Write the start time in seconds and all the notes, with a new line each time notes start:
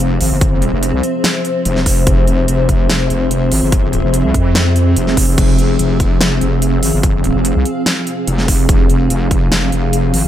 Already playing: F1 F3 C4 G#4 C5 E5
0.21 G#1, open hi-hat
0.31 G1
0.41 kick, closed hi-hat
0.62 closed hi-hat
0.73 F1
0.83 closed hi-hat
0.93 C2
1.03 closed hi-hat
1.24 snare, closed hi-hat
1.45 closed hi-hat
1.65 F1, closed hi-hat
1.76 snare
1.86 kick, open hi-hat
2.07 F1, kick, closed hi-hat
2.27 closed hi-hat
2.48 F1, closed hi-hat
2.69 kick, closed hi-hat
2.90 F1, snare, closed hi-hat
3.10 F1, closed hi-hat
3.31 closed hi-hat
3.52 G#1, open hi-hat
3.62 G1
3.72 kick, closed hi-hat
3.93 closed hi-hat
4.04 F1
4.14 closed hi-hat
4.25 C2
4.34 F2, kick, closed hi-hat
4.55 snare, closed hi-hat
4.76 closed hi-hat
4.96 F1, closed hi-hat
5.07 snare
5.17 kick, open hi-hat
5.38 F1 G#4, kick, closed hi-hat, crash
5.59 closed hi-hat
5.79 F1, closed hi-hat
5.87 F5
6.00 kick, closed hi-hat
6.21 F1, snare, closed hi-hat
6.41 F1, closed hi-hat
6.62 closed hi-hat
6.83 G#1, open hi-hat
6.94 G1
7.03 kick, closed hi-hat
7.24 closed hi-hat
7.35 F1
7.45 closed hi-hat
7.56 C2
7.65 closed hi-hat
7.86 snare, closed hi-hat
8.07 closed hi-hat
8.28 F1, closed hi-hat
8.38 snare
8.48 kick, open hi-hat
8.69 F1, kick, closed hi-hat
8.90 closed hi-hat
9.10 F1, closed hi-hat
9.31 kick, closed hi-hat
9.52 F1, snare, closed hi-hat
9.72 F1, closed hi-hat
9.93 closed hi-hat
10.14 G#1, open hi-hat
10.24 G1